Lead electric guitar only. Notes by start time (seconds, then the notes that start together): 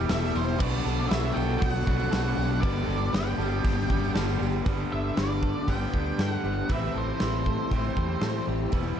0.10 E5
0.35 C5
0.59 D5
1.09 E5
1.33 G5
1.59 G5
1.70 F#5
2.61 D5
3.13 G5
4.92 E5
5.18 D5
5.69 G5
6.21 F#5
6.71 E5
6.98 C5